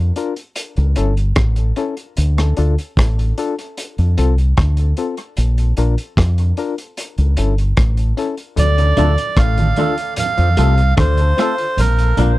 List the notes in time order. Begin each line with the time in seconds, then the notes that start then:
Already playing: F2
0.16 D4 F4 A#4, closed hi-hat
0.36 closed hi-hat
0.56 closed hi-hat
0.76 C#2 E4 A4, closed hi-hat
0.96 G1 C#4 E4 A4, closed hi-hat
1.17 closed hi-hat
1.36 A1, kick, cross-stick, closed hi-hat
1.56 closed hi-hat
1.76 C#4 E4 A4, closed hi-hat
1.97 closed hi-hat
2.17 D2, closed hi-hat
2.38 cross-stick, closed hi-hat
2.57 D2 D4 F4 A4, closed hi-hat
2.78 closed hi-hat
2.97 A1, kick, cross-stick, closed hi-hat
3.19 closed hi-hat
3.38 D4 F4 A4, closed hi-hat
3.59 closed hi-hat
3.77 closed hi-hat
3.98 F2 F4 A4, closed hi-hat
4.18 C2 C4 F4 A4, closed hi-hat
4.38 closed hi-hat
4.57 D2, kick, cross-stick, closed hi-hat
4.77 closed hi-hat
4.97 C4 F4 A4, closed hi-hat
5.17 closed hi-hat
5.37 A#1, closed hi-hat
5.58 closed hi-hat
5.77 A#1 D4 F4 A#4, closed hi-hat
5.98 closed hi-hat
6.17 F2, kick, cross-stick, closed hi-hat
6.38 closed hi-hat
6.57 D4 F4 A#4, closed hi-hat
6.78 closed hi-hat
6.97 closed hi-hat
7.18 C#2 E4 A4, closed hi-hat
7.37 G1 C#4 E4 A4, closed hi-hat
7.58 closed hi-hat
7.77 A1, kick, cross-stick, closed hi-hat
7.97 closed hi-hat
8.17 C#4 E4 A4, closed hi-hat
8.37 closed hi-hat
8.56 D2 D3 D5, closed hi-hat, low conga
8.78 closed hi-hat
8.97 D2 D3 A3 D4 F4 A4, closed hi-hat, low conga
9.18 closed hi-hat
9.36 A1 A2 F5, kick, cross-stick, closed hi-hat
9.58 F4 A4, closed hi-hat, high conga
9.76 A3 D4 F4 A4, closed hi-hat, high conga
9.98 closed hi-hat
10.16 F5, closed hi-hat, low conga
10.37 F2 F3, closed hi-hat
10.57 C2 C3 A3 C4 F4 A4, closed hi-hat
10.78 closed hi-hat
10.97 D2 D3 C5, kick, cross-stick, closed hi-hat, high conga
11.17 closed hi-hat
11.38 A3 C4 F4 A4, cross-stick, closed hi-hat
11.58 F4 A4, closed hi-hat
11.77 A#1 A#4, closed hi-hat, low conga
11.98 closed hi-hat
12.17 A#1 A#3 D4 F4 A#4, closed hi-hat, low conga